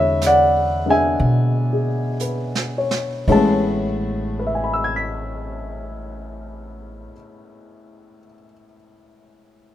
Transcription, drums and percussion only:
0.22 snare, hi-hat pedal
1.19 brush sweep
2.20 hi-hat pedal
2.55 snare
2.91 snare
3.28 kick, ride

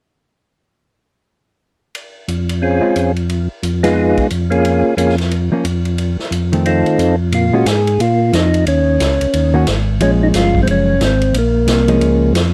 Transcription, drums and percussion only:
1.95 ride
2.28 hi-hat pedal, ride
2.49 ride
2.96 hi-hat pedal, ride
3.16 ride
3.29 ride
3.63 hi-hat pedal, ride
3.84 snare, ride
4.17 kick, ride
4.30 hi-hat pedal, ride
4.52 ride
4.65 ride
4.98 hi-hat pedal, ride
5.09 snare
5.18 snare, ride
5.31 ride
5.65 hi-hat pedal, ride
5.85 ride
5.98 ride
6.19 snare
6.32 hi-hat pedal, ride
6.53 ride
6.66 ride
6.86 ride
6.99 hi-hat pedal, ride
7.32 ride
7.66 snare, hi-hat pedal, ride
7.87 ride
8.00 ride
8.33 snare, hi-hat pedal, ride
8.54 ride
8.67 ride
9.00 snare, hi-hat pedal, ride
9.21 ride
9.33 ride
9.67 snare, hi-hat pedal, ride
10.00 ride
10.34 snare, hi-hat pedal, ride
10.55 kick
10.67 ride
11.01 snare, hi-hat pedal, ride
11.21 ride
11.34 ride
11.68 snare, hi-hat pedal, ride
11.88 ride
12.01 ride
12.35 snare, hi-hat pedal, ride

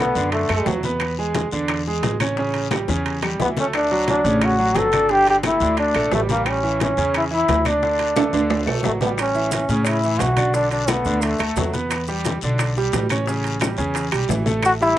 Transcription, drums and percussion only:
0.15 high bongo, high conga, short guiro
0.32 high bongo, high conga, high timbale, long guiro
0.49 high conga, high timbale, claves
0.66 high bongo, low bongo, high conga, low timbale, short guiro
0.83 high bongo, high conga, short guiro
1.00 high bongo, high conga, high timbale, long guiro, claves
1.18 high bongo, high conga
1.34 high bongo, high conga, high timbale, low timbale, short guiro
1.51 high bongo, short guiro
1.68 high bongo, high conga, high timbale, long guiro, claves
1.87 high bongo, high conga
2.03 high bongo, low bongo, high conga, high timbale, low timbale, short guiro
2.20 high conga, high timbale, short guiro, claves
2.37 high bongo, high conga, long guiro
2.54 high bongo, high conga, high timbale
2.71 high bongo, high conga, high timbale, low timbale, short guiro, claves
2.88 high bongo, high conga, short guiro
3.06 high conga, high timbale, long guiro
3.23 low bongo, high conga, high timbale, claves
3.40 low bongo, high conga, low timbale, short guiro
3.57 low bongo, high conga, short guiro
3.73 high bongo, high conga, high timbale, long guiro, claves
3.91 high bongo, high conga
4.08 high bongo, high conga, high timbale, low timbale, short guiro
4.25 high bongo, short guiro
4.41 high bongo, high conga, high timbale, long guiro, claves
4.59 high bongo, high conga
4.75 high bongo, low bongo, high conga, high timbale, low timbale, short guiro
4.92 high conga, high timbale, short guiro, claves
5.09 high bongo, high conga, long guiro
5.27 high bongo, high conga, high timbale
5.43 high bongo, high conga, high timbale, low timbale, short guiro, claves
5.60 high bongo, high conga, short guiro
5.77 high bongo, high conga, high timbale, long guiro
5.95 high conga, high timbale, claves
6.12 high bongo, low bongo, high conga, low timbale, short guiro
6.29 high bongo, high conga, short guiro
6.46 high bongo, high conga, high timbale, long guiro, claves
6.64 high bongo, high conga
6.80 high bongo, high conga, high timbale, low timbale, short guiro
6.97 high bongo, short guiro
7.14 high bongo, high conga, high timbale, long guiro, claves
7.32 high bongo, high conga
7.48 high bongo, low bongo, high conga, high timbale, low timbale, short guiro
7.65 high conga, high timbale, short guiro, claves
7.83 high bongo, high conga, long guiro
7.99 high bongo, high conga, high timbale
8.16 high bongo, high conga, high timbale, short guiro, claves
8.33 high bongo, high conga, high timbale, short guiro
8.50 high bongo, high conga, low timbale, long guiro
8.67 high conga, low timbale, claves
8.83 high bongo, low bongo, high conga, low timbale, short guiro
9.01 high bongo, high conga, low timbale, short guiro
9.18 high bongo, high conga, high timbale, long guiro, claves, maracas
9.35 high bongo, high conga, maracas
9.51 high bongo, high conga, high timbale, low timbale, short guiro, maracas
9.68 high bongo, short guiro, maracas
9.85 high bongo, high conga, high timbale, long guiro, claves, maracas
10.02 high bongo, high conga, maracas
10.19 high bongo, low bongo, high conga, high timbale, low timbale, short guiro, maracas
10.37 high conga, high timbale, short guiro, claves, maracas
10.54 high bongo, high conga, long guiro, maracas
10.71 high bongo, high conga, high timbale, maracas
10.88 high bongo, high conga, high timbale, low timbale, short guiro, claves, maracas
11.05 high bongo, high conga, short guiro, maracas
11.22 high bongo, high conga, high timbale, long guiro, maracas
11.38 high conga, high timbale, claves, maracas
11.56 high bongo, low bongo, high conga, low timbale, short guiro, maracas
11.73 high bongo, high conga, short guiro, maracas
11.91 high bongo, high conga, high timbale, long guiro, claves, maracas
12.08 high bongo, high conga, maracas
12.25 high bongo, high conga, high timbale, low timbale, short guiro, maracas
12.41 high bongo, short guiro, maracas
12.58 high bongo, high conga, high timbale, long guiro, claves, maracas
12.77 high bongo, high conga, maracas
12.92 high bongo, low bongo, high conga, high timbale, low timbale, short guiro, maracas
13.09 high conga, high timbale, short guiro, claves, maracas
13.26 high bongo, high conga, long guiro, maracas
13.44 high bongo, high conga, high timbale, maracas
13.60 high bongo, high conga, high timbale, low timbale, short guiro, claves, maracas
13.77 high bongo, high conga, short guiro, maracas
13.94 high bongo, high conga, high timbale, long guiro, maracas
14.12 high conga, high timbale, claves, maracas
14.28 high bongo, low bongo, high conga, low timbale, short guiro, maracas
14.46 high bongo, high conga, short guiro, maracas
14.63 high bongo, high conga, high timbale, long guiro, claves, maracas
14.80 high bongo, high conga, maracas

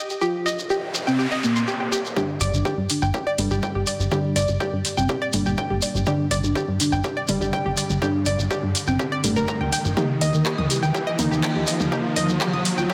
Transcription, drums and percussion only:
0.10 shekere
0.21 shekere
0.46 open hi-hat, shekere
0.59 shekere
0.70 shekere
0.94 open hi-hat, shekere
1.07 shekere
1.19 shekere
1.43 open hi-hat, shekere
1.56 shekere
1.68 shekere
1.92 open hi-hat, shekere
2.05 shekere
2.16 kick, shekere
2.41 open hi-hat, shekere
2.54 shekere
2.65 kick, shekere
2.90 open hi-hat, shekere
3.02 shekere
3.14 kick, shekere
3.38 open hi-hat, shekere
3.51 shekere
3.62 kick, shekere
3.87 open hi-hat, shekere
4.00 shekere
4.11 kick, shekere
4.36 open hi-hat, shekere
4.48 shekere
4.60 kick, shekere
4.85 open hi-hat, shekere
4.97 shekere
5.09 kick, shekere
5.33 open hi-hat, shekere
5.46 shekere
5.57 kick, shekere
5.82 open hi-hat, shekere
5.95 shekere
6.06 kick, shekere
6.31 open hi-hat, shekere
6.44 shekere
6.55 kick, shekere
6.80 open hi-hat, shekere
6.92 shekere
7.04 kick, shekere
7.28 open hi-hat, shekere
7.41 shekere
7.53 kick, shekere
7.77 open hi-hat, shekere
7.90 shekere
8.02 kick, shekere
8.26 open hi-hat, shekere
8.39 shekere
8.51 kick, shekere
8.75 open hi-hat, shekere
8.87 shekere
8.99 kick, shekere
9.24 open hi-hat, shekere
9.36 shekere
9.48 kick, shekere
9.73 open hi-hat, shekere
9.85 shekere
9.97 kick, mid tom, shekere
10.21 open hi-hat, shekere
10.33 shekere
10.46 kick, clap, shekere
10.58 mid tom
10.70 open hi-hat, shekere
10.83 shekere
10.94 kick, shekere
11.19 open hi-hat, mid tom, shekere
11.32 shekere
11.43 kick, clap, shekere
11.67 open hi-hat, shekere
11.80 mid tom, shekere
11.92 kick, shekere
12.16 open hi-hat, shekere
12.29 shekere
12.41 kick, clap, mid tom, shekere
12.65 open hi-hat, shekere
12.78 shekere
12.90 kick, shekere

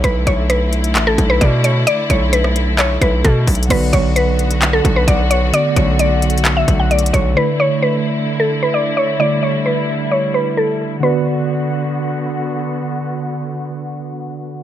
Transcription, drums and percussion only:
0.04 kick, closed hi-hat
0.27 kick, closed hi-hat
0.50 cross-stick, closed hi-hat
0.73 closed hi-hat
0.84 closed hi-hat
0.95 clap, closed hi-hat
1.18 kick, closed hi-hat
1.41 kick, closed hi-hat
1.64 closed hi-hat
1.87 closed hi-hat
2.10 kick, closed hi-hat
2.33 closed hi-hat
2.44 cross-stick
2.56 closed hi-hat
2.79 clap, closed hi-hat
3.02 kick, closed hi-hat
3.25 kick, closed hi-hat
3.47 kick, closed hi-hat, open hi-hat
3.55 closed hi-hat
3.63 closed hi-hat
3.70 kick, closed hi-hat, crash
3.93 kick, closed hi-hat
4.16 closed hi-hat
4.39 closed hi-hat
4.51 closed hi-hat
4.62 clap, closed hi-hat
4.85 kick, closed hi-hat
5.08 kick, closed hi-hat
5.31 closed hi-hat
5.54 closed hi-hat
5.76 kick, closed hi-hat
5.99 closed hi-hat
6.22 closed hi-hat
6.30 closed hi-hat
6.38 closed hi-hat
6.45 clap, closed hi-hat
6.68 kick, closed hi-hat
6.91 closed hi-hat
6.99 closed hi-hat
7.06 closed hi-hat
7.14 kick, closed hi-hat

